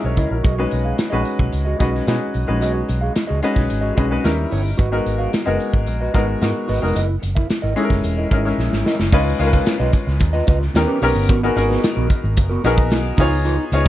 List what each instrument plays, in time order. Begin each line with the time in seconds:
Already playing: grand piano G#3 C#4 D#4 E4 F#4 G#4 A#4
0.04 fingered electric bass B1, grand piano A#4 C#5, muted clean electric guitar stroke
0.17 fingered electric bass C#2, clean electric guitar E4 A#4 D#5, kick, closed hi-hat
0.31 fingered electric bass A#1, grand piano F#4 A#4, muted clean electric guitar stroke
0.43 fingered electric bass B1, clean electric guitar F#4 G#4 D#5, kick, closed hi-hat
0.57 grand piano G#3 C#4 D#4 F#4 B4, muted clean electric guitar stroke
0.71 fingered electric bass B1, muted clean electric guitar stroke, closed hi-hat
0.85 clean electric guitar F#4 G#4 F5
0.98 muted clean electric guitar stroke, snare, closed hi-hat
1.10 fingered electric bass A#1, grand piano G#3 C#4 D#4 F#4 B4, clean electric guitar F#4 G#4 D#5
1.24 muted clean electric guitar stroke, closed hi-hat
1.39 fingered electric bass B1, muted clean electric guitar stroke, kick
1.52 fingered electric bass C#2, muted clean electric guitar stroke, closed hi-hat
1.65 clean electric guitar F#4 G#4 D#5
1.79 fingered electric bass B1, grand piano G#3 C#4 D#4 F#4 B4, clean electric guitar F#4 G#4 D#5, kick, snare, closed hi-hat
1.93 muted clean electric guitar stroke, snare
2.06 fingered electric bass B2, grand piano G#3 C#4 D#4 F#4 B4, muted clean electric guitar stroke, snare, closed hi-hat
2.20 muted clean electric guitar stroke
2.34 fingered electric bass B1, closed hi-hat
2.47 fingered electric bass A#1, grand piano G#3 C#4 D#4 F#4 B4, muted clean electric guitar stroke
2.61 fingered electric bass B1, clean electric guitar F#4 G#4 D#5, closed hi-hat
2.75 muted clean electric guitar stroke
2.88 fingered electric bass B1, muted clean electric guitar stroke, closed hi-hat
3.01 clean electric guitar F#4 G#4 F5
3.15 muted clean electric guitar stroke, snare, closed hi-hat
3.27 fingered electric bass C#2, clean electric guitar F#4 G#4 D#5
3.42 grand piano G#3 C#4 D#4 F#4 B4, muted clean electric guitar stroke, closed hi-hat
3.55 fingered electric bass B1, muted clean electric guitar stroke, kick, snare
3.69 fingered electric bass G#1, muted clean electric guitar stroke, closed hi-hat
3.81 clean electric guitar F#4 G#4 D#5
3.95 fingered electric bass B1, grand piano G#3 C#4 D#4 F#4 B4, clean electric guitar F#4 G#4 D#5, kick, closed hi-hat
4.09 grand piano G#3 C#4 D#4 F#4 B4, muted clean electric guitar stroke
4.24 fingered electric bass D#2, grand piano G3 C#4 D#4 E4 A#4, snare, closed hi-hat
4.37 muted clean electric guitar stroke
4.50 fingered electric bass G1, clean electric guitar E4 G4 C#5, open hi-hat
4.64 muted clean electric guitar stroke
4.77 fingered electric bass G#1, clean electric guitar F#4 B4 D#5, kick, closed hi-hat
4.91 grand piano G#3 B3 D#4 F#4 A#4, muted clean electric guitar stroke
5.05 fingered electric bass G#1, muted clean electric guitar stroke, closed hi-hat
5.18 clean electric guitar F#4 B4 F5
5.33 snare, closed hi-hat
5.45 fingered electric bass F#1, grand piano G#3 B3 D#4 F#4 A#4, clean electric guitar F#4 B4 D#5
5.59 muted clean electric guitar stroke, closed hi-hat
5.73 fingered electric bass G#1, muted clean electric guitar stroke, kick
5.87 fingered electric bass A#1, muted clean electric guitar stroke, closed hi-hat
6.01 clean electric guitar F#4 B4 D#5
6.14 fingered electric bass G#1, grand piano G#3 B3 D#4 F#4 A#4, clean electric guitar F#4 B4 D#5, kick, snare, closed hi-hat
6.28 muted clean electric guitar stroke
6.41 fingered electric bass G#2, grand piano G#3 B3 D#4 F#4 A#4, snare, closed hi-hat
6.55 muted clean electric guitar stroke
6.68 fingered electric bass G#1, clean electric guitar F#4 B4 D#5, open hi-hat
6.82 fingered electric bass F1, grand piano G#3 B3 D#4 F#4 A#4, muted clean electric guitar stroke
6.95 fingered electric bass F#1, clean electric guitar E4 A#4 D#5, closed hi-hat
7.09 muted clean electric guitar stroke
7.21 fingered electric bass F#1, muted clean electric guitar stroke, closed hi-hat
7.35 clean electric guitar E4 A#4 E5, kick
7.49 muted clean electric guitar stroke, snare, closed hi-hat
7.62 fingered electric bass G#1, clean electric guitar E4 A#4 D#5
7.76 grand piano G#3 C#4 D#4 E4 A4, muted clean electric guitar stroke, closed hi-hat
7.83 grand piano A#4
7.90 fingered electric bass F#1, muted clean electric guitar stroke, kick, snare
8.04 fingered electric bass E1, muted clean electric guitar stroke, closed hi-hat
8.18 clean electric guitar E4 A#4 D#5
8.30 fingered electric bass G#1, grand piano G#3 C#4 D#4 E4 A#4, clean electric guitar E4 D#5, kick, closed hi-hat
8.44 grand piano G#3 C#4 D#4 E4 A#4, muted clean electric guitar stroke, snare
8.58 fingered electric bass A#1, snare
8.72 fingered electric bass G#1, muted clean electric guitar stroke, snare
8.84 clean electric guitar E4 A#4 D#5, snare
8.99 fingered electric bass F#1, muted clean electric guitar stroke, snare
9.11 fingered electric bass C#2, grand piano G#3 C#4 D#4 F4 B4, clean electric guitar F4 B4 D#5, kick, crash, shaker
9.25 muted clean electric guitar stroke, shaker
9.39 fingered electric bass C#2, grand piano G#3 C#4 D#4 F4 A#4, muted clean electric guitar stroke, closed hi-hat, shaker
9.47 grand piano B4
9.53 clean electric guitar F4 B4 F5, kick, shaker
9.66 muted clean electric guitar stroke, snare, closed hi-hat, shaker
9.80 fingered electric bass B1, clean electric guitar F4 B4 D#5, shaker
9.93 muted clean electric guitar stroke, kick, closed hi-hat
10.07 fingered electric bass C#2, muted clean electric guitar stroke, snare, shaker
10.20 fingered electric bass D#2, muted clean electric guitar stroke, kick, closed hi-hat, shaker
10.33 clean electric guitar F4 B4 D#5, shaker
10.47 fingered electric bass C#2, clean electric guitar F4 B4 D#5, kick, closed hi-hat
10.61 muted clean electric guitar stroke, snare, shaker
10.74 fingered electric bass D#2, grand piano B3 C#4 D#4 G4 A#4, muted clean electric guitar stroke, snare, closed hi-hat, shaker
10.87 clean electric guitar C#4 G4 B4, shaker
11.01 fingered electric bass B1, grand piano B3 C#4 D#4 G4 A#4, clean electric guitar C#4 G4 B4, open hi-hat
11.15 fingered electric bass G1, muted clean electric guitar stroke, shaker
11.28 fingered electric bass G#1, clean electric guitar B3 F#4 A#4, kick, closed hi-hat, shaker
11.42 grand piano B3 D#4 F#4 G#4 A#4, muted clean electric guitar stroke, shaker
11.56 fingered electric bass G#1, grand piano B3 D#4 F#4 G#4 A#4, muted clean electric guitar stroke, closed hi-hat, shaker
11.69 clean electric guitar B3 F#4 B4, snare, shaker
11.84 snare, closed hi-hat, shaker
11.96 fingered electric bass A#1, clean electric guitar B3 F#4 A#4, shaker
12.09 muted clean electric guitar stroke, kick, closed hi-hat
12.23 fingered electric bass G#1, muted clean electric guitar stroke, shaker
12.36 fingered electric bass F#1, muted clean electric guitar stroke, kick, closed hi-hat, shaker
12.49 clean electric guitar B3 F#4 A#4, shaker
12.64 fingered electric bass A#1, clean electric guitar B3 F#4 A#4, grand piano B3 D#4 F#4 G#4 A#4, snare, closed hi-hat
12.77 muted clean electric guitar stroke, kick, shaker
12.91 fingered electric bass B1, snare, closed hi-hat, shaker
13.04 muted clean electric guitar stroke, shaker
13.17 fingered electric bass C#2, grand piano B3 D#4 F4 G#4 C#5, clean electric guitar D#4 F4 B4, kick, open hi-hat
13.32 muted clean electric guitar stroke, shaker
13.44 clean electric guitar D#4 F4 B4, closed hi-hat, shaker
13.58 muted clean electric guitar stroke, shaker
13.72 fingered electric bass C#2, grand piano B3 D#4 F4 G#4 C#5, muted clean electric guitar stroke, closed hi-hat, shaker